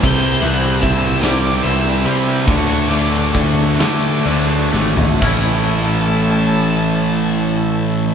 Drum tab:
CC |------------|------------|x-----------|
RD |x-x-x-x-x-x-|x-x-x-x-x---|------------|
SD |------o-----|------o---o-|------------|
FT |------------|-----------o|------------|
BD |o---o-------|o---o-------|o-----------|